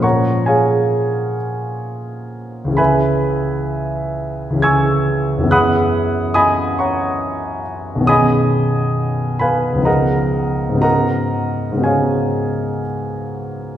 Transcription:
X:1
M:3/4
L:1/8
Q:1/4=66
K:C#mix
V:1 name="Grand piano"
[cfac'] [Gceg]2 z3 | [B=egb]4 [gc'=e'g']2 | [fbd'f']2 [dgbd'] [cfac']2 z | [dgbd']3 [Begb] [Adfa]2 |
[Adfa]2 [Gceg]2 z2 |]
V:2 name="Grand piano"
[A,,E,CEA]6 | [C,,=E,CG]4 [C,,E,CG]2 | [F,,=E,B,CG]6 | [B,,,D,B,CG]4 [C,,E,B,DG]2 |
[G,,C,B,DF]2 [G,,C,B,DF]4 |]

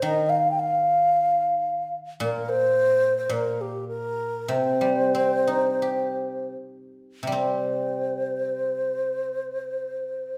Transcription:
X:1
M:4/4
L:1/16
Q:1/4=99
K:none
V:1 name="Xiao"
_e2 f3/2 g/2 f8- f2 z2 | _B2 c4- c c B2 G2 B4 | c12 z4 | c16 |]
V:2 name="Guzheng" clef=bass
_E,12 z4 | _B,,8 B,,8 | C,2 G,2 C2 _E2 G8 | [C,G,C]16 |]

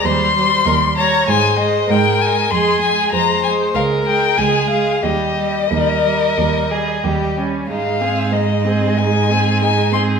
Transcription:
X:1
M:4/4
L:1/8
Q:1/4=95
K:Ab
V:1 name="Violin"
c'3 b a e g a | c' a b a f g a f | e6- e z | f2 e2 a2 a c' |]
V:2 name="Violin"
c2 B d c2 B2 | A2 c2 B2 A2 | G2 B3 A G D | E A E A E A E A |]
V:3 name="Viola" clef=bass
G, G, G, G, A, A, A, A, | A, A, A, A, A, A, A, A, | G, G, G, G, G, G, G, G, | A, C A, C A, C A, C |]
V:4 name="Cello" clef=bass
E,,2 E,,2 A,,2 A,,2 | F,,2 F,,2 D,,2 D,,2 | E,,2 E,,2 E,,2 E,,2 | A,,8 |]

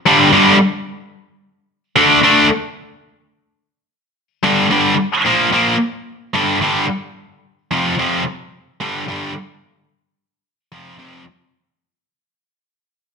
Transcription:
X:1
M:4/4
L:1/8
Q:1/4=110
K:Gm
V:1 name="Distorted electric guitar" clef=bass
[G,,D,G,] [G,,D,G,] z4 z [D,A,D] | [D,A,D] z6 z | [G,,D,G,] [G,,D,G,] z [B,,F,B,] [B,,F,B,] z2 [G,,D,G,] | [G,,D,G,] z3 [F,,C,F,] [F,,C,F,] z2 |
[G,,D,G,] [G,,D,G,] z4 z [F,,C,F,] | [F,,C,F,] z6 z |]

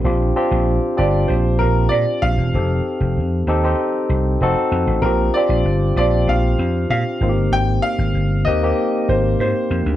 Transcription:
X:1
M:4/4
L:1/16
Q:1/4=96
K:Bb
V:1 name="Grand piano"
z6 d2 c2 B2 d2 f2- | f6 z8 z2 | B2 d4 d2 f4 f4 | g2 f4 e4 c2 c3 z |]
V:2 name="Tine electric piano"
[CDFG]2 [CDFG]4 [CDFG]8 z2 | [CEGA]6 [CEGA] [CEGc]4- [CEGc] [CE_GA]4 | [CDFG]2 [CDFG]4 [CDFG]8 [B,CEFG]2- | [B,CEFG]6 [B,CEG] [B,CEG]8 z |]
V:3 name="Slap bass" clef=bass
B,,,2 z B,,,2 z G,,,2 B,,,2 B,,,2 B,, z B,,, =E,,, | F,,,2 z F,,, F,,2 E,,2 z2 C,,2 F,,, z F,, A,,, | B,,,2 z B,,, G,,,2 B,,,2 B,,,2 F,,2 B,, z _A,,, G,,, | _A,,,2 z A,,, G,,,2 E,,2 z2 A,,,2 _A,, z F,, D,, |]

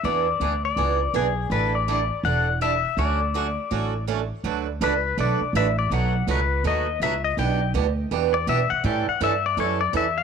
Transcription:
X:1
M:4/4
L:1/16
Q:"Swing" 1/4=164
K:D
V:1 name="Pedal steel guitar"
d6 d6 ^G4 | B2 d6 f4 e4 | d12 z4 | z4 B4 d4 e2 d2 |
f4 B4 ^d4 e2 d2 | g4 z6 d2 e2 f2 | g2 f2 e2 d2 c2 d2 e2 =f2 |]
V:2 name="Steel-string acoustic guitar"
[E,B,D^G]2 z2 [E,B,DG] z3 [E,B,DG]2 z2 [E,B,DG] z3 | [D,G,DEA]2 z2 [D,G,DEA] z3 [D,G,DEA]2 z2 [D,G,DEA] z3 | [D,F,A,CF]2 z2 [D,F,A,CF] z3 [D,F,A,CF]2 z2 [D,F,A,CF] z3 | [D,F,A,DFB]2 z2 [D,F,A,DFB] z3 [D,F,A,DFB]2 z2 [D,F,A,DFB] z3 |
[B,,F,A,^DF]2 z2 [B,,F,A,DF] z3 [B,,F,A,DF]2 z2 [B,,F,A,DF] z3 | [B,,E,B,DG]2 z2 [B,,E,B,DG] z3 [B,,E,B,DG]2 z2 [B,,E,B,DG] z3 | [E,G,CEA]2 z2 [E,G,CEA] z3 [E,G,CEA]2 z2 [E,G,CEA] z3 |]
V:3 name="Upright bass" clef=bass
E,,4 D,,4 C,,4 B,,,4 | A,,,8 E,,,8 | D,,8 A,,,8 | D,,4 C,,4 B,,,2 z2 A,,,4 |
B,,,4 C,,4 ^D,,4 C,,4 | B,,,4 D,,4 E,,4 B,,2 z2 | A,,2 z2 G,,4 F,,4 E,,4 |]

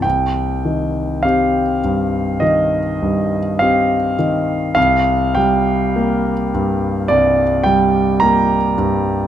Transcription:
X:1
M:4/4
L:1/8
Q:1/4=52
K:Cm
V:1 name="Grand piano"
g2 f2 e2 f2 | f g3 d g b2 |]
V:2 name="Grand piano" clef=bass
C,, E, [CG] G,, E, G,, [CG] E, | C,, G, [B,G] G,, C,, G, [B,G] G,, |]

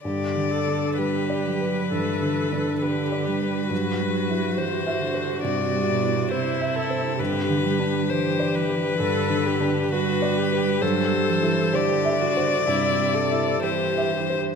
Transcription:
X:1
M:4/4
L:1/8
Q:1/4=66
K:Clyd
V:1 name="Violin"
d2 B4 B2- | B2 c2 d2 c A | B2 c B3 B2 | c2 d4 c2 |]
V:2 name="Grand piano"
(3G,, D, D (3B d B (3G,, D, D (3B d B | (3G,, G, E (3c e c (3G,, G, E (3c e c | (3G,, D, D (3B d B (3G,, D, D (3B d B | (3G,, G, E (3c e c (3G,, G, E (3c e c |]
V:3 name="Viola"
G A G2 A2 G2 | F6 E2 | G2 G2 A G F G | A2 G F E A G2 |]
V:4 name="Cello" clef=bass
D,2 G, F, E,2 D, G, | F,2 E, D, C, B,, C,2 | D, G, E,2 D,2 G,2 | F, E, D,2 C,2 E,2 |]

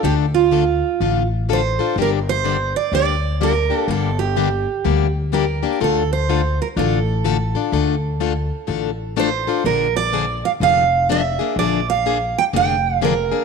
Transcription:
X:1
M:4/4
L:1/8
Q:"Swing" 1/4=125
K:Dm
V:1 name="Steel-string acoustic guitar"
G F4 z c2 | B c2 d d2 B2 | A G4 z B2 | A c2 B A4- |
A6 c2 | B d2 f f2 e2 | d f2 g g2 B2 |]
V:2 name="Steel-string acoustic guitar"
[D,A,DFA] z [D,A,DFA] z [D,A,DFA] z [D,A,DFA] [DFA] | [D,G,B,DG] z [D,G,B,DG] z [D,G,B,DG] z [D,G,B,DG] [B,DG] | [D,G,B,DG] z [D,G,B,DG] z [D,G,B,DG] z [D,G,B,DG] [B,DG] | [D,A,DFA] z [D,A,DFA] z [D,A,DFA] z [D,A,DFA] [DFA] |
[D,A,DFA] z [D,A,DFA] z [D,A,DFA] z [D,A,DFA] [DFA] | [D,F,B,D_A] z [D,F,B,DA] z [D,F,B,DA] z [D,F,B,DA] [B,DA] | [D,F,B,D_A] z [D,F,B,DA] z [D,F,B,DA] z [D,F,B,DA] [B,DA] |]
V:3 name="Upright bass" clef=bass
D,,4 A,,,4 | G,,,4 D,,4 | G,,,4 D,,4 | D,,4 A,,,4 |
D,,4 A,,,4 | B,,,4 F,,,4 | B,,,4 F,,,4 |]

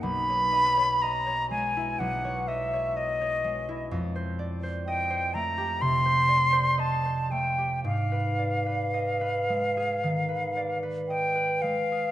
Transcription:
X:1
M:4/4
L:1/16
Q:1/4=60
K:C#dor
V:1 name="Flute"
b4 a2 g2 f2 e2 d4 | [K:Ablyd] z4 g2 b2 c'4 =a2 g2 | f12 g2 f2 |]
V:2 name="Harp"
[B,,,Dd] c d c d c G, E B,,, c d c d c G, E | [K:Ablyd] F,, c d c e c =A, G C, c d c e c A, G | A,, _c d c e c A, A E, c d c e c A, A |]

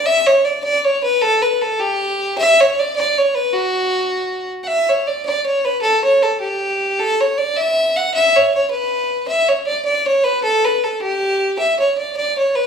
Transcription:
X:1
M:6/8
L:1/16
Q:3/8=104
K:D
V:1 name="Fiddle"
e2 c2 d2 d3/2 d/2 c2 B2 | A2 B2 A2 G6 | e2 c2 d2 d2 c2 B2 | F8- F2 z3/2 f/2 |
e2 c2 d2 d2 c2 B2 | A2 c2 A2 G6 | A2 c2 d2 e4 f2 | e2 c2 c2 B6 |
e2 c2 d2 d2 c2 B2 | A2 B2 A2 G6 | e2 c2 d2 d2 c2 B2 |]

